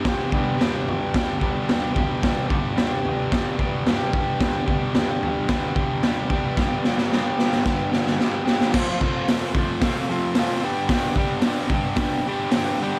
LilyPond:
<<
  \new Staff \with { instrumentName = "Overdriven electric guitar" } { \time 4/4 \key g \major \tempo 4 = 111 <g, d g b d' g'>8 <g b d' g'>8 <g b d' g'>4 <g, d g b d' g'>8 <g b d' g'>8 <g b d' g'>8 <g b d' g'>8 | <g, d g b d' g'>8 <g b d' g'>8 <g b d' g'>4 <g, d g b d' g'>8 <g b d' g'>8 <g b d' g'>8 <g b d' g'>8 | <g, d g b d' g'>8 <g b d' g'>8 <g b d' g'>4 <g, d g b d' g'>8 <g b d' g'>8 <g b d' g'>8 <g b d' g'>8 | <g, d g b d' g'>8 <g b d' g'>8 <g b d' g'>4 <g, d g b d' g'>8 <g b d' g'>8 <g b d' g'>8 <g b d' g'>8 |
\key f \lydian <f, c f a c' f'>8 <f, c f a c' f'>8 <f, c f a c' f'>8 <f, c f a c' f'>8 <f, c f a c' f'>8 <f, c f a c' f'>8 <f, c f a c' f'>8 <g, d g b d' g'>8 | <g, d g b d' g'>8 <g, d g b d' g'>8 <g, d g b d' g'>8 <g, d g b d' g'>8 <g, d g b d' g'>8 <g, d g b d' g'>8 <g, d g b d' g'>8 <g, d g b d' g'>8 | }
  \new DrumStaff \with { instrumentName = "Drums" } \drummode { \time 4/4 <bd sn tomfh>8 <bd tomfh>8 <sn tomfh>8 tomfh8 <bd sn tomfh>8 <bd tomfh>8 <sn tomfh>8 <bd tomfh>8 | <bd sn tomfh>8 <bd tomfh>8 <sn tomfh>8 tomfh8 <bd sn tomfh>8 <bd tomfh>8 <sn tomfh>8 <bd tomfh>8 | <bd sn tomfh>8 <bd tomfh>8 <sn tomfh>8 tomfh8 <bd sn tomfh>8 <bd tomfh>8 <sn tomfh>8 <bd tomfh>8 | <bd sn>8 sn16 sn16 sn8 sn16 sn16 <bd sn>8 sn16 sn16 sn8 sn16 sn16 |
<cymc bd sn>8 bd8 <hho sn>8 bd8 <hho bd sn>4 <hho sn>4 | <hho bd sn>8 bd8 <hho sn>8 bd8 <hho bd sn>4 <hho sn>4 | }
>>